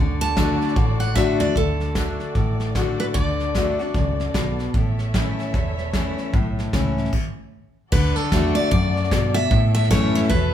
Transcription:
Already playing: fingered electric bass D2, steel-string acoustic guitar D3, violin section A4 D5
0.00 violin section F#4
0.21 steel-string acoustic guitar A5, snare
0.36 steel-string acoustic guitar D3 A3 D4 F#4, kick, snare, hi-hat pedal
0.61 snare
0.69 snare
0.76 fingered electric bass A1, steel-string acoustic guitar A2, kick, snare
1.00 steel-string acoustic guitar F#5, snare
1.15 steel-string acoustic guitar D3 A3 D4 F#4 E5, kick, snare, hi-hat pedal
1.40 steel-string acoustic guitar D5, floor tom
1.54 fingered electric bass D2, steel-string acoustic guitar D3 A4, violin section F#4 A4 D5, kick, snare
1.80 snare
1.95 steel-string acoustic guitar D3 A3 D4 F#4, kick, snare, hi-hat pedal
2.20 snare
2.35 fingered electric bass A1, steel-string acoustic guitar A2, kick, snare
2.60 snare
2.75 steel-string acoustic guitar D3 A3 D4 F#4, kick, snare, hi-hat pedal
3.00 steel-string acoustic guitar B4, snare
3.14 fingered electric bass D2, steel-string acoustic guitar D3 D5, kick, snare
3.40 snare
3.55 steel-string acoustic guitar D3 A3 D4 F#4, kick, snare, hi-hat pedal
3.79 steel-string acoustic guitar D4 F#4, snare
3.94 fingered electric bass C#2, steel-string acoustic guitar F#2, kick, snare
4.20 snare
4.34 fingered electric bass B1, steel-string acoustic guitar B2, kick, snare, hi-hat pedal
4.59 snare
4.73 fingered electric bass A1, steel-string acoustic guitar A2, violin section A3 C#5 E5, kick, snare
4.99 snare
5.14 steel-string acoustic guitar E3 A3 C#4 E4, kick, snare, hi-hat pedal
5.39 snare
5.54 fingered electric bass E1, steel-string acoustic guitar E2, kick, snare
5.78 snare
5.93 steel-string acoustic guitar E3 A3 C#4 E4, kick, snare, hi-hat pedal
6.18 snare
6.33 fingered electric bass B1, steel-string acoustic guitar A2, kick, snare
6.59 snare
6.73 fingered electric bass C#2, steel-string acoustic guitar E3 A3 C#4 E4, kick, snare, hi-hat pedal
6.98 snare
7.05 snare
7.13 kick, crash
7.92 fingered electric bass D2, steel-string acoustic guitar D3 B4, violin section F#4 A4 D5, kick, snare, crash
8.16 steel-string acoustic guitar A4, muted fingered electric bass stroke, snare
8.24 snare
8.32 fingered electric bass E2, steel-string acoustic guitar D3 A3 D4 F#4, kick, snare, hi-hat pedal
8.55 steel-string acoustic guitar D5, muted fingered electric bass stroke, snare
8.65 snare
8.71 fingered electric bass F#2, steel-string acoustic guitar F#2 D5, kick, snare
8.97 snare
9.04 snare
9.11 fingered electric bass G2, steel-string acoustic guitar B2, kick, snare, hi-hat pedal
9.34 steel-string acoustic guitar E5, snare
9.51 steel-string acoustic guitar A2, fingered electric bass A2, violin section A3 C#5 E5, kick, snare
9.75 steel-string acoustic guitar E5, snare
9.84 snare
9.90 fingered electric bass F#2, steel-string acoustic guitar E3 A3 C#4 E4 C#5, kick, snare, hi-hat pedal
10.15 steel-string acoustic guitar C#5, snare
10.23 snare
10.29 fingered electric bass E2, steel-string acoustic guitar B2 B4, kick, snare

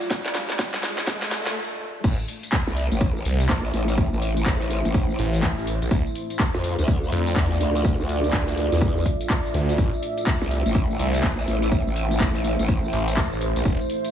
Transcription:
Already playing: ambient pad A3 F4 D5 F5, riser
0.01 closed hi-hat, tambourine
0.10 kick, snare, closed hi-hat, tambourine
0.25 snare, closed hi-hat, tambourine
0.35 snare, open hi-hat
0.49 snare, closed hi-hat, tambourine
0.59 kick, snare, closed hi-hat, tambourine
0.74 snare, open hi-hat, tambourine
0.83 snare, open hi-hat
0.98 snare, closed hi-hat, tambourine
1.07 kick, snare, closed hi-hat, tambourine, swell
1.22 snare, closed hi-hat, tambourine
1.31 snare, open hi-hat
1.46 snare, closed hi-hat, tambourine
2.04 detuned saw bass A1, ambient pad A3 E4 C5 E5, kick, closed hi-hat, crash, tambourine
2.20 tambourine
2.28 open hi-hat
2.43 closed hi-hat, tambourine
2.53 kick, clap, closed hi-hat, tambourine
2.67 wobble bass C2, tambourine
2.77 open hi-hat
2.92 wobble bass A1, closed hi-hat, tambourine
3.01 kick, closed hi-hat, tambourine
3.16 tambourine
3.25 detuned saw bass C2, open hi-hat
3.40 closed hi-hat, tambourine
3.49 wobble bass A#1, kick, clap, closed hi-hat
3.65 tambourine
3.74 wobble bass A1, open hi-hat
3.88 closed hi-hat, tambourine
3.98 kick, closed hi-hat, tambourine
4.13 wobble bass A1, tambourine
4.22 open hi-hat
4.37 closed hi-hat, tambourine
4.46 wobble bass A1, kick, clap, closed hi-hat, tambourine
4.61 open hi-hat, tambourine
4.70 open hi-hat
4.85 wobble bass A1, closed hi-hat, tambourine
4.94 kick, closed hi-hat, tambourine
5.10 tambourine
5.19 detuned saw bass A1, open hi-hat
5.34 closed hi-hat, tambourine
5.43 kick, clap, closed hi-hat, tambourine
5.58 detuned saw bass A1, tambourine
5.67 open hi-hat
5.82 detuned saw bass A#1, closed hi-hat, tambourine
5.91 detuned saw bass D2, ambient pad F4 D5 F5, kick, closed hi-hat, tambourine
6.07 tambourine
6.15 open hi-hat
6.30 closed hi-hat, tambourine
6.39 kick, clap, closed hi-hat
6.54 wobble bass F2, tambourine
6.64 open hi-hat
6.79 wobble bass D2, closed hi-hat, tambourine
6.88 kick, closed hi-hat, tambourine
7.03 tambourine
7.12 detuned saw bass F2, open hi-hat
7.27 closed hi-hat, tambourine
7.36 wobble bass E2, kick, clap, closed hi-hat, tambourine
7.52 tambourine
7.60 wobble bass D2, open hi-hat
7.75 closed hi-hat, tambourine
7.85 ambient pad E5, kick, closed hi-hat, tambourine
7.99 wobble bass D2, tambourine
8.09 open hi-hat
8.24 closed hi-hat, tambourine
8.33 wobble bass D2, kick, clap, closed hi-hat, tambourine
8.48 open hi-hat, tambourine
8.57 open hi-hat
8.72 wobble bass E2, closed hi-hat, tambourine
8.81 kick, closed hi-hat, tambourine
8.97 tambourine
9.06 kick, open hi-hat
9.21 closed hi-hat, tambourine
9.30 kick, clap, closed hi-hat, tambourine
9.46 tambourine
9.54 detuned saw bass D2, open hi-hat
9.69 closed hi-hat, tambourine
9.78 detuned saw bass A1, ambient pad E4 C5, kick, closed hi-hat, tambourine
9.94 tambourine
10.03 open hi-hat
10.18 closed hi-hat, tambourine
10.27 kick, clap, closed hi-hat
10.42 wobble bass C2, tambourine
10.51 open hi-hat
10.66 wobble bass A1, closed hi-hat, tambourine
10.75 kick, closed hi-hat, tambourine
10.91 tambourine
10.99 detuned saw bass C2, open hi-hat
11.14 closed hi-hat, tambourine
11.23 wobble bass A#1, kick, clap, closed hi-hat, tambourine
11.39 tambourine
11.48 wobble bass A1, open hi-hat
11.63 closed hi-hat, tambourine
11.72 kick, closed hi-hat, tambourine
11.87 wobble bass A1, tambourine
11.96 open hi-hat
12.11 closed hi-hat, tambourine
12.20 wobble bass A1, kick, clap, closed hi-hat
12.35 open hi-hat, tambourine
12.44 open hi-hat
12.59 wobble bass A1, closed hi-hat, tambourine
12.69 kick, closed hi-hat, tambourine
12.84 tambourine
12.93 detuned saw bass A1, open hi-hat
13.08 closed hi-hat, tambourine
13.17 kick, clap, closed hi-hat, tambourine
13.32 detuned saw bass A1, tambourine
13.41 open hi-hat
13.56 detuned saw bass A#1, closed hi-hat, tambourine
13.65 detuned saw bass F1, ambient pad A3 F4 F5, kick, closed hi-hat, tambourine
13.81 tambourine
13.90 open hi-hat
14.05 closed hi-hat, tambourine

